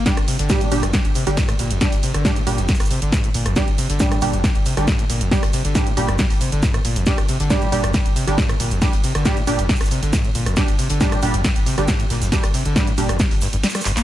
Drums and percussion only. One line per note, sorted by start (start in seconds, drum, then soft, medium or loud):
0.06 kick loud
0.06 snare loud
0.06 closed hi-hat medium
0.06 ride medium
0.06 shaker medium
0.17 cross-stick loud
0.17 closed hi-hat medium
0.28 open hi-hat loud
0.28 shaker medium
0.39 closed hi-hat soft
0.39 closed hi-hat medium
0.49 kick loud
0.49 snare loud
0.49 closed hi-hat medium
0.49 ride medium
0.49 shaker medium
0.61 closed hi-hat medium
0.71 open hi-hat loud
0.71 shaker medium
0.83 cross-stick medium
0.83 closed hi-hat medium
0.94 kick loud
0.94 snare loud
0.94 closed hi-hat medium
0.94 ride medium
0.94 shaker medium
1.05 closed hi-hat medium
1.15 open hi-hat loud
1.15 shaker medium
1.27 snare medium
1.27 closed hi-hat medium
1.37 kick loud
1.37 snare loud
1.37 closed hi-hat medium
1.37 ride medium
1.37 shaker medium
1.49 cross-stick medium
1.49 closed hi-hat medium
1.59 open hi-hat loud
1.59 shaker medium
1.71 closed hi-hat medium
1.81 kick loud
1.81 snare loud
1.81 closed hi-hat medium
1.81 ride medium
1.81 shaker medium
1.92 closed hi-hat soft
1.92 closed hi-hat medium
2.03 open hi-hat loud
2.03 shaker medium
2.14 cross-stick medium
2.14 closed hi-hat medium
2.25 kick loud
2.25 snare loud
2.25 closed hi-hat medium
2.25 ride medium
2.25 shaker medium
2.36 closed hi-hat medium
2.47 open hi-hat loud
2.47 shaker medium
2.58 closed hi-hat medium
2.68 kick loud
2.68 snare loud
2.68 snare medium
2.68 closed hi-hat medium
2.68 ride medium
2.68 shaker medium
2.75 snare medium
2.75 shaker medium
2.80 cross-stick medium
2.80 snare medium
2.80 open hi-hat medium
2.80 shaker medium
2.85 snare medium
2.85 shaker medium
2.91 open hi-hat loud
2.91 shaker medium
3.02 closed hi-hat medium
3.12 kick loud
3.12 snare loud
3.12 closed hi-hat medium
3.12 ride medium
3.12 shaker loud
3.24 closed hi-hat medium
3.34 open hi-hat loud
3.34 shaker medium
3.46 cross-stick medium
3.46 closed hi-hat medium
3.56 kick loud
3.56 snare loud
3.56 closed hi-hat medium
3.56 ride medium
3.56 shaker medium
3.68 closed hi-hat medium
3.78 open hi-hat loud
3.78 shaker medium
3.90 closed hi-hat medium
3.90 closed hi-hat soft
4.00 kick loud
4.00 snare loud
4.00 closed hi-hat medium
4.00 ride medium
4.00 shaker loud
4.12 cross-stick medium
4.12 closed hi-hat medium
4.21 open hi-hat loud
4.21 shaker medium
4.33 closed hi-hat medium
4.44 kick loud
4.44 snare loud
4.44 closed hi-hat medium
4.44 ride medium
4.44 shaker medium
4.55 closed hi-hat medium
4.65 open hi-hat loud
4.65 shaker medium
4.77 cross-stick medium
4.77 snare medium
4.77 closed hi-hat medium
4.88 kick loud
4.88 snare loud
4.88 closed hi-hat medium
4.88 ride medium
4.88 shaker medium
4.99 closed hi-hat medium
5.10 open hi-hat loud
5.10 shaker medium
5.21 closed hi-hat medium
5.31 kick loud
5.31 snare loud
5.31 closed hi-hat medium
5.31 ride medium
5.31 shaker medium
5.43 cross-stick loud
5.43 closed hi-hat medium
5.43 closed hi-hat soft
5.53 open hi-hat loud
5.53 shaker medium
5.65 closed hi-hat medium
5.75 kick loud
5.75 snare loud
5.75 closed hi-hat medium
5.75 ride medium
5.75 shaker medium
5.87 closed hi-hat medium
5.97 open hi-hat loud
5.97 shaker medium
6.08 cross-stick loud
6.08 closed hi-hat medium
6.18 kick loud
6.18 snare loud
6.18 closed hi-hat medium
6.18 ride medium
6.18 shaker medium
6.30 snare soft
6.30 open hi-hat medium
6.41 open hi-hat loud
6.41 shaker medium
6.52 closed hi-hat soft
6.62 kick loud
6.62 snare loud
6.62 closed hi-hat medium
6.62 ride medium
6.62 shaker loud
6.74 cross-stick loud
6.74 closed hi-hat soft
6.85 open hi-hat loud
6.85 shaker medium
6.96 closed hi-hat medium
7.06 kick loud
7.06 snare loud
7.06 closed hi-hat medium
7.06 ride medium
7.06 shaker medium
7.18 cross-stick loud
7.18 closed hi-hat medium
7.29 open hi-hat loud
7.29 shaker medium
7.40 closed hi-hat medium
7.40 closed hi-hat soft
7.50 kick loud
7.50 snare loud
7.50 closed hi-hat medium
7.50 ride medium
7.50 shaker medium
7.62 closed hi-hat medium
7.72 open hi-hat loud
7.72 shaker medium
7.84 cross-stick loud
7.84 closed hi-hat medium
7.94 kick loud
7.94 snare loud
7.94 closed hi-hat medium
7.94 ride medium
7.94 shaker medium
8.06 closed hi-hat medium
8.16 open hi-hat loud
8.16 shaker medium
8.27 snare medium
8.27 closed hi-hat soft
8.38 kick loud
8.38 snare loud
8.38 closed hi-hat medium
8.38 ride medium
8.38 shaker medium
8.49 cross-stick loud
8.49 closed hi-hat soft
8.60 open hi-hat loud
8.60 shaker medium
8.71 closed hi-hat medium
8.82 kick loud
8.82 snare loud
8.82 closed hi-hat medium
8.82 ride medium
8.82 shaker medium
8.93 closed hi-hat medium
8.93 closed hi-hat soft
9.04 open hi-hat loud
9.04 shaker medium
9.15 cross-stick loud
9.15 closed hi-hat medium
9.25 kick loud
9.25 snare loud
9.25 closed hi-hat medium
9.25 ride medium
9.25 shaker medium
9.37 closed hi-hat medium
9.47 open hi-hat loud
9.47 shaker medium
9.59 closed hi-hat medium
9.69 kick loud
9.69 snare loud
9.69 snare medium
9.69 closed hi-hat medium
9.69 ride medium
9.69 shaker medium
9.75 snare medium
9.75 shaker medium
9.81 cross-stick loud
9.81 snare medium
9.81 open hi-hat medium
9.81 shaker medium
9.85 snare loud
9.85 shaker medium
9.91 open hi-hat loud
9.91 shaker medium
10.03 closed hi-hat soft
10.13 kick loud
10.13 snare loud
10.13 closed hi-hat medium
10.13 ride medium
10.13 shaker loud
10.25 closed hi-hat soft
10.35 open hi-hat loud
10.35 shaker medium
10.46 cross-stick medium
10.46 closed hi-hat medium
10.57 kick loud
10.57 snare loud
10.57 closed hi-hat medium
10.57 ride medium
10.57 shaker medium
10.68 closed hi-hat medium
10.79 open hi-hat loud
10.79 shaker medium
10.90 closed hi-hat soft
10.90 closed hi-hat medium
11.01 kick loud
11.01 snare loud
11.01 closed hi-hat medium
11.01 ride medium
11.01 shaker medium
11.12 cross-stick medium
11.12 closed hi-hat medium
11.22 open hi-hat loud
11.22 shaker medium
11.34 closed hi-hat medium
11.44 kick loud
11.44 snare loud
11.44 closed hi-hat medium
11.44 ride medium
11.44 shaker medium
11.56 closed hi-hat medium
11.66 open hi-hat loud
11.66 shaker medium
11.78 cross-stick medium
11.78 snare medium
11.78 closed hi-hat medium
11.88 kick loud
11.88 snare loud
11.88 closed hi-hat medium
11.88 ride medium
11.88 shaker loud
12.00 closed hi-hat medium
12.10 snare loud
12.10 open hi-hat loud
12.10 shaker medium
12.22 snare loud
12.22 closed hi-hat medium
12.22 shaker medium
12.32 kick loud
12.32 snare loud
12.32 closed hi-hat medium
12.32 ride medium
12.32 shaker medium
12.44 cross-stick loud
12.44 closed hi-hat medium
12.44 closed hi-hat soft
12.54 open hi-hat loud
12.54 shaker medium
12.66 closed hi-hat medium
12.76 kick loud
12.76 snare loud
12.76 closed hi-hat medium
12.76 ride medium
12.76 shaker loud
12.87 closed hi-hat medium
12.97 snare loud
12.97 open hi-hat loud
12.97 shaker medium
13.09 cross-stick loud
13.09 closed hi-hat medium
13.19 kick loud
13.19 snare loud
13.19 closed hi-hat medium
13.19 ride medium
13.19 shaker medium
13.31 snare soft
13.31 open hi-hat medium
13.41 snare loud
13.41 open hi-hat loud
13.41 shaker medium
13.53 closed hi-hat medium
13.63 snare loud
13.63 closed hi-hat medium
13.63 ride medium
13.63 shaker medium
13.70 snare loud
13.70 shaker medium
13.75 cross-stick medium
13.75 snare medium
13.75 closed hi-hat medium
13.75 shaker medium
13.80 snare medium
13.80 shaker medium
13.85 snare loud
13.85 clap medium
13.85 open hi-hat loud
13.85 shaker medium
13.96 snare loud
13.96 clap loud
13.96 closed hi-hat medium
13.96 shaker medium